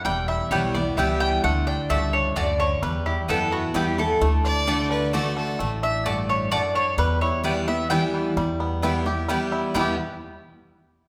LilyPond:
<<
  \new Staff \with { instrumentName = "Mandolin" } { \time 3/4 \key e \dorian \tempo 4 = 130 g''8 e''8 cis''8 d''8 e''8 g''8 | fis''8 g''8 e''8 cis''8 d''8 cis''8 | b'8 g'8 a'8 fis'8 g'8 a'8~ | a'2 r4 |
r8 e''8 d''8 cis''8 d''8 cis''8 | b'8 cis''8 d''8 e''8 g''8 r8 | r2. | g''8 r2 r8 | }
  \new Staff \with { instrumentName = "Fiddle" } { \time 3/4 \key e \dorian r2. | r2. | r2. | r8 d''4 b'8 a'8 a'8~ |
a'16 r2 r8. | r2. | r2. | r2. | }
  \new Staff \with { instrumentName = "Mandolin" } { \time 3/4 \key e \dorian r4 <b e' b' g''>8 r8 <b e' b' g''>8 r8 | r4 <a fis' d'' a''>8 r8 <a fis' d'' a''>8 r8 | r4 <b e' b' g''>8 r8 <b e' b' g''>8 r8 | r4 <a fis' d'' a''>8 r8 <a fis' d'' a''>8 r8 |
r4 <a fis' d'' a''>8 r8 <a fis' d'' a''>8 r8 | r4 <b e' b' g''>8 r8 <b e' b' g''>8 r8 | r4 <b e' b' g''>8 r8 <b e' b' g''>8 r8 | <b e' b' g''>8 r2 r8 | }
  \new Staff \with { instrumentName = "Five-string banjo" } { \time 3/4 \key e \dorian g8 e'8 g8 b8 e'8 e8 | a8 d'8 a8 d'8 d'8 d8 | g8 e'4 b8 e'8 e8 | a8 d'8 d'8 d'8 a8 d'8 |
a8 d'8 a8 d'8 d'8 d'8 | g8 e'8 g8 b8 e'8 e8 | g8 b8 e'8 g'8 g8 e'8 | <g b e' g'>8 r2 r8 | }
  \new Staff \with { instrumentName = "Steel-string acoustic guitar" } { \clef bass \time 3/4 \key e \dorian << { r4 <e g b e'>8 <b e'>8 <e g b e'>4 | r2. | r4 <e b e'>4 <e g b e'>8 <b e'>8 | r4 <d a d' fis'>4 <d a d' fis'>4 |
r2. | r4 <e g b e'>8 <b e'>8 <e g b e'>4 | r4 <e g b e'>8 <b e'>8 <e g b e'>4 | <e, b, e g b e'>8 r2 r8 | } \\ { e,2 r4 | d4 g,4 fis,4 | e,2 r4 | d2 r4 |
a,4 g,4 fis,4 | e,2 r4 | e,2 r4 | r2. | } >> }
  \new Staff \with { instrumentName = "Upright bass" } { \clef bass \time 3/4 \key e \dorian e,,4 b,,4 cis,4 | d,4 cis,4 d,4 | e,4 fis,4 e,4 | d,2. |
a,,2. | e,2. | e,2. | e,8 r2 r8 | }
>>